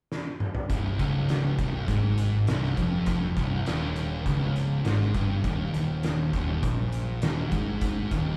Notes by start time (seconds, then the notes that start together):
0.12 snare
0.40 mid tom
0.55 floor tom
0.69 C1 C2, kick, closed hi-hat
0.99 C#1 C#2, kick, closed hi-hat
1.29 snare, closed hi-hat
1.58 C1 C2, kick, closed hi-hat
1.88 G#1 G#2, kick, closed hi-hat
2.18 closed hi-hat
2.47 C1 C2, snare, closed hi-hat
2.64 snare
2.77 F1 F2, kick, closed hi-hat
3.06 kick, closed hi-hat
3.37 C1 C2, kick, closed hi-hat
3.66 D#1 D#2, snare, closed hi-hat
3.96 closed hi-hat
4.26 C#1 C#2, kick, closed hi-hat
4.56 closed hi-hat
4.84 G#1 G#2, snare, closed hi-hat
5.01 snare
5.14 G1 G2, kick, closed hi-hat
5.44 D#1 D#2, kick, closed hi-hat
5.73 D#1 D#2, closed hi-hat
6.03 snare, closed hi-hat
6.33 D#1 D#2, kick, closed hi-hat
6.63 A#1 A#2, kick, closed hi-hat
6.92 closed hi-hat
7.22 D#1 D#2, snare, closed hi-hat
7.52 G#1 G#2, kick, closed hi-hat
7.81 kick, closed hi-hat
8.11 D#1 D#2, kick, closed hi-hat